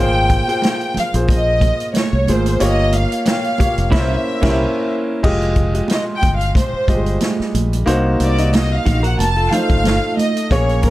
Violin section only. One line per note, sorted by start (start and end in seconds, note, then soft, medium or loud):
0.00 0.97 G5 loud
0.99 1.13 F5 medium
1.31 1.92 D#5 medium
1.97 2.29 C#5 medium
2.31 2.63 C5 medium
2.63 2.93 D#5 loud
2.95 3.27 F5 medium
3.28 3.89 F5 medium
3.96 4.93 E5 medium
5.94 6.03 D#5 medium
6.16 6.35 G5 medium
6.36 6.56 F5 medium
6.59 7.19 C5 medium
8.25 8.53 D5 medium
8.58 8.73 D#5 medium
8.75 9.06 F5 medium
9.07 9.20 F#5 medium
9.21 9.51 A5 loud
9.53 10.18 F5 loud
10.19 10.49 D#5 medium
10.53 10.85 C#5 medium
10.85 10.90 A#4 medium